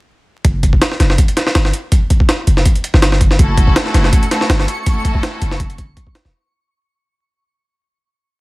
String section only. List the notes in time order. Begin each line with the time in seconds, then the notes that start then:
3.39 A3 C#4 E4 F#4 A4
4.31 A3 C#4 E4 F#4 A4
4.86 A3 C#4 E4 F#4 A4